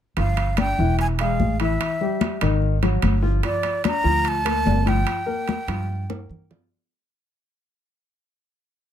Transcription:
0.17 upright bass G1, grand piano F3 F4, flute F5, high conga, high timbale
0.37 high conga, high timbale
0.57 grand piano D4 D5, flute G5, high conga, high timbale
0.78 upright bass E1, grand piano E3 E4
0.99 flute G#5, high conga, high timbale
1.19 grand piano G#3 G#4, flute F5, high conga, high timbale
1.39 upright bass A1, high conga
1.60 grand piano E3 E4, flute E5, high timbale
1.80 high conga, high timbale
2.01 grand piano G3 G4, high conga
2.21 high conga, high timbale
2.41 upright bass G#1, grand piano D#3 D#4, high conga, high timbale
2.62 high conga
2.83 grand piano F#3 F#4, high conga, high timbale
3.02 upright bass G1, high conga, high timbale
3.22 grand piano F3 F4, high conga
3.43 grand piano F3 F4, flute D5, high conga, high timbale
3.63 high conga, high timbale
3.84 grand piano D4 D5, flute A#5, high conga, high timbale
4.04 upright bass D2, grand piano F3 F4
4.25 flute A5, high conga, high timbale
4.45 grand piano A#3 A#4, high conga, high timbale
4.65 upright bass G1, high conga, low timbale
4.86 grand piano F3 F4, flute G5, high conga, high timbale
5.07 high conga, high timbale
5.26 grand piano A#3 A#4, high conga
5.48 high conga, high timbale
5.68 upright bass G2, grand piano F3 F4, high conga, high timbale
5.89 high conga
6.10 grand piano A#3 A#4, high conga, high timbale
6.29 upright bass G2, low conga
6.50 grand piano F3 F4, low conga, low timbale

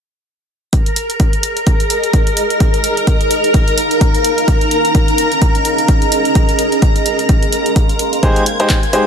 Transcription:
0.73 ambient pad G#4, string machine A#4 A#5, kick, closed hi-hat
0.86 closed hi-hat
0.96 closed hi-hat
1.08 ambient pad D#5 A#5, closed hi-hat
1.20 kick, closed hi-hat
1.33 closed hi-hat
1.43 closed hi-hat
1.57 closed hi-hat
1.67 kick, closed hi-hat
1.80 closed hi-hat
1.90 closed hi-hat
2.03 closed hi-hat
2.13 kick, closed hi-hat
2.27 closed hi-hat
2.37 ambient pad D#4, closed hi-hat
2.50 closed hi-hat
2.60 kick, closed hi-hat
2.74 closed hi-hat
2.84 closed hi-hat
2.97 closed hi-hat
3.07 kick, closed hi-hat
3.21 ambient pad A#4 F5, closed hi-hat
3.31 closed hi-hat
3.44 closed hi-hat
3.54 kick, closed hi-hat
3.68 closed hi-hat
3.78 closed hi-hat
3.91 closed hi-hat
4.01 kick, closed hi-hat
4.15 closed hi-hat
4.24 ambient pad C#4, closed hi-hat
4.38 closed hi-hat
4.48 kick, closed hi-hat
4.61 closed hi-hat
4.71 closed hi-hat
4.85 closed hi-hat
4.93 ambient pad D#5, kick, closed hi-hat
5.08 closed hi-hat
5.13 ambient pad G#4
5.18 closed hi-hat
5.32 closed hi-hat
5.42 kick, closed hi-hat
5.55 closed hi-hat
5.65 closed hi-hat
5.78 closed hi-hat
5.88 kick, closed hi-hat
6.02 closed hi-hat
6.12 closed hi-hat
6.25 closed hi-hat
6.35 ambient pad A#4, kick, closed hi-hat
6.49 closed hi-hat
6.59 closed hi-hat
6.72 closed hi-hat
6.82 kick, closed hi-hat
6.96 closed hi-hat
7.06 ambient pad F5, closed hi-hat
7.19 ambient pad C6, closed hi-hat
7.29 kick, closed hi-hat
7.43 closed hi-hat
7.52 closed hi-hat
7.66 closed hi-hat
7.76 kick, closed hi-hat
7.89 closed hi-hat
7.99 closed hi-hat
8.13 closed hi-hat
8.23 ambient pad G#3, grand piano G#3 D#4 G4 G#4 C5, string machine G#6, kick, closed hi-hat
8.36 closed hi-hat
8.46 closed hi-hat
8.60 grand piano G#3 D#4 G4 G#4 C5, closed hi-hat
8.69 kick, clap, closed hi-hat
8.83 closed hi-hat
8.93 grand piano G#3 D#4 G4 G#4 C5, closed hi-hat

